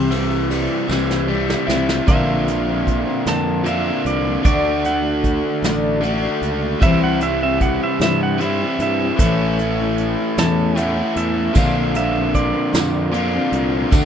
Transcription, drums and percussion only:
0.11 ride
0.31 tambourine
0.51 ride
0.89 snare, tambourine
1.11 snare
1.48 snare, tambourine
1.69 snare
1.89 snare
2.07 kick, closed hi-hat
2.48 closed hi-hat
2.87 kick, closed hi-hat
3.26 snare, closed hi-hat
3.66 closed hi-hat
4.06 closed hi-hat
4.45 kick, closed hi-hat
4.84 closed hi-hat
5.24 kick, closed hi-hat
5.64 snare, closed hi-hat
6.03 closed hi-hat
6.42 closed hi-hat
6.82 kick, closed hi-hat
7.21 closed hi-hat
7.61 kick, closed hi-hat
8.01 snare, closed hi-hat
8.40 closed hi-hat
8.80 closed hi-hat
9.19 kick, closed hi-hat
9.59 closed hi-hat
9.98 closed hi-hat
10.38 snare, closed hi-hat
10.77 closed hi-hat
11.16 closed hi-hat
11.55 kick, closed hi-hat, tambourine
11.95 closed hi-hat
12.34 kick, closed hi-hat, tambourine
12.74 snare, closed hi-hat, tambourine
13.14 closed hi-hat
13.52 closed hi-hat
13.92 kick, closed hi-hat, tambourine

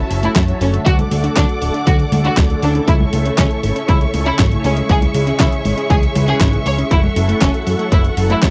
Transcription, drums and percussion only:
0.11 open hi-hat
0.23 closed hi-hat
0.36 kick, snare, clap, closed hi-hat
0.48 closed hi-hat
0.61 open hi-hat
0.74 closed hi-hat
0.86 kick, closed hi-hat
0.99 closed hi-hat, high conga
1.11 open hi-hat
1.24 closed hi-hat
1.37 kick, snare, clap, closed hi-hat
1.49 closed hi-hat
1.62 open hi-hat
1.74 closed hi-hat
1.87 kick, closed hi-hat
1.99 closed hi-hat
2.12 open hi-hat, high conga
2.25 closed hi-hat
2.37 kick, snare, clap, closed hi-hat
2.50 closed hi-hat
2.62 open hi-hat
2.75 closed hi-hat
2.88 kick, closed hi-hat
3.00 high conga
3.13 open hi-hat
3.26 closed hi-hat
3.38 kick, snare, clap, closed hi-hat
3.51 closed hi-hat
3.63 open hi-hat
3.76 closed hi-hat
3.89 kick, closed hi-hat
4.01 closed hi-hat
4.14 open hi-hat
4.26 closed hi-hat
4.39 kick, snare, clap, closed hi-hat
4.52 closed hi-hat
4.64 open hi-hat
4.77 closed hi-hat
4.89 kick, closed hi-hat
5.02 closed hi-hat, high conga
5.14 open hi-hat
5.27 closed hi-hat
5.40 kick, snare, clap, closed hi-hat
5.52 closed hi-hat
5.65 open hi-hat
5.78 closed hi-hat
5.90 kick, closed hi-hat
6.03 closed hi-hat
6.15 open hi-hat, high conga
6.28 closed hi-hat
6.41 kick, snare, clap, closed hi-hat
6.53 closed hi-hat
6.66 open hi-hat
6.79 closed hi-hat
6.91 kick, closed hi-hat
7.04 high conga
7.16 open hi-hat
7.29 closed hi-hat
7.42 kick, snare, clap, closed hi-hat
7.54 closed hi-hat
7.67 open hi-hat
7.79 closed hi-hat
7.92 kick, closed hi-hat
8.05 closed hi-hat
8.17 open hi-hat
8.30 closed hi-hat
8.42 kick, snare, clap, closed hi-hat

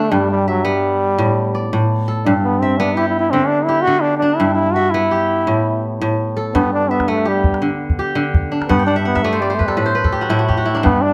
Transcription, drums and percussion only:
6.55 calabash thump, calabash click
6.83 calabash click
7.00 calabash thump, calabash click
7.18 calabash click
7.44 calabash thump
7.54 calabash click
7.90 calabash thump
8.34 calabash thump
8.62 calabash click
8.70 calabash thump, calabash click
8.97 calabash click
9.16 calabash thump, calabash click
9.34 calabash click
9.60 calabash thump
9.68 calabash click
10.05 calabash thump
10.23 calabash click
10.50 calabash thump
10.77 calabash click
10.86 calabash thump, calabash click

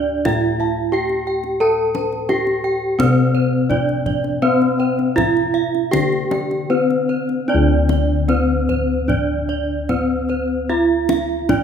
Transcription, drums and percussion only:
0.25 kendang high, kendang low
1.09 kendang slap
1.44 kendang slap
1.95 kendang high
2.12 kendang slap
2.29 kendang high
2.47 kendang slap
3.00 kendang high, kendang low
3.71 kendang low
3.89 kendang slap
4.06 kendang low
4.24 kendang slap
4.62 kendang slap
4.99 kendang slap
5.18 kendang high, kendang low
5.37 kendang slap
5.75 kendang slap
5.93 kendang high, kendang low
6.12 kendang slap
6.31 kendang high
6.51 kendang slap
6.90 kendang slap
7.29 kendang slap
7.89 kendang slap, kendang high
8.29 kendang high
8.69 kendang slap, kendang low
9.10 kendang low
9.49 kendang slap
9.89 kendang high, kendang low
10.29 kendang slap
11.09 kendang slap, kendang high
11.49 kendang high, kendang low

